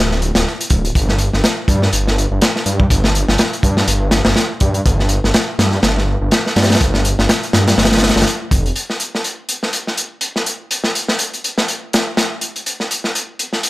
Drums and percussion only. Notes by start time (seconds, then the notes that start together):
0.11 snare
0.22 closed hi-hat
0.35 snare, closed hi-hat
0.46 snare
0.61 closed hi-hat
0.70 kick, closed hi-hat
0.85 closed hi-hat
0.95 kick, closed hi-hat
1.09 snare
1.18 closed hi-hat
1.33 snare
1.44 snare, closed hi-hat
1.68 kick, closed hi-hat
1.82 snare
1.93 closed hi-hat
2.07 snare
2.18 closed hi-hat
2.42 snare, closed hi-hat
2.56 snare
2.66 closed hi-hat
2.80 kick
2.90 kick, closed hi-hat
3.04 snare
3.15 closed hi-hat
3.28 snare
3.38 snare, closed hi-hat
3.53 closed hi-hat
3.63 kick, closed hi-hat
3.77 snare
3.88 closed hi-hat
4.11 snare, closed hi-hat
4.25 snare
4.36 snare, closed hi-hat
4.60 kick, closed hi-hat
4.74 closed hi-hat
4.86 kick, closed hi-hat
4.99 snare
5.09 closed hi-hat
5.24 snare
5.34 snare, closed hi-hat
5.59 snare, closed hi-hat
5.72 snare
5.83 snare, closed hi-hat
5.97 snare
6.31 snare, closed hi-hat
6.46 snare
6.56 snare, closed hi-hat
6.63 snare, closed hi-hat
6.70 snare, closed hi-hat
6.75 snare, closed hi-hat
6.81 kick, closed hi-hat
6.94 snare
7.05 closed hi-hat
7.19 snare
7.29 snare, closed hi-hat
7.43 closed hi-hat
7.53 snare, closed hi-hat
7.68 snare, closed hi-hat
7.78 snare, closed hi-hat
7.85 snare, closed hi-hat
7.92 snare, closed hi-hat
7.97 snare, closed hi-hat
8.03 snare, closed hi-hat
8.09 snare, closed hi-hat
8.16 snare, closed hi-hat
8.22 snare, closed hi-hat
8.27 closed hi-hat
8.51 kick, closed hi-hat
8.66 closed hi-hat
8.76 closed hi-hat
8.90 snare
9.00 closed hi-hat
9.15 snare
9.24 closed hi-hat
9.49 closed hi-hat
9.63 snare
9.73 closed hi-hat
9.87 snare
9.97 closed hi-hat
10.21 closed hi-hat
10.36 snare
10.46 closed hi-hat
10.71 closed hi-hat
10.84 snare
10.95 closed hi-hat
11.08 snare
11.19 closed hi-hat
11.34 closed hi-hat
11.44 closed hi-hat
11.58 snare
11.68 closed hi-hat
11.93 snare, closed hi-hat
12.17 snare, closed hi-hat
12.41 closed hi-hat
12.56 closed hi-hat
12.66 closed hi-hat
12.80 snare
12.91 closed hi-hat
13.04 snare
13.15 closed hi-hat
13.39 closed hi-hat
13.53 snare
13.63 closed hi-hat